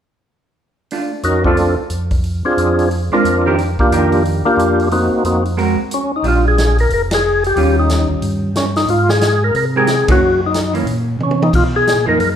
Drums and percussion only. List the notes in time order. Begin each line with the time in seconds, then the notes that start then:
0.91 open hi-hat
1.23 closed hi-hat
1.44 kick
1.57 open hi-hat
1.90 closed hi-hat
2.11 kick, open hi-hat
2.24 open hi-hat
2.58 closed hi-hat
2.79 open hi-hat
2.91 open hi-hat
3.25 closed hi-hat
3.58 open hi-hat
3.79 kick
3.92 closed hi-hat
4.12 open hi-hat
4.25 open hi-hat
4.59 closed hi-hat
4.80 open hi-hat
4.91 open hi-hat
5.25 closed hi-hat
5.45 open hi-hat
5.58 open hi-hat
5.91 closed hi-hat
6.24 open hi-hat
6.58 snare, closed hi-hat
6.78 open hi-hat
6.90 open hi-hat
7.11 snare, ride
7.44 open hi-hat
7.56 open hi-hat
7.89 snare, closed hi-hat
8.22 open hi-hat
8.55 snare, closed hi-hat
8.76 snare, open hi-hat
8.88 open hi-hat
9.09 snare
9.21 snare, closed hi-hat
9.55 open hi-hat
9.87 snare, closed hi-hat
10.08 kick, ride
10.54 snare, closed hi-hat
10.75 open hi-hat
10.87 open hi-hat
11.20 high tom
11.31 high tom
11.42 high tom
11.53 kick, crash
11.87 snare, closed hi-hat
12.20 open hi-hat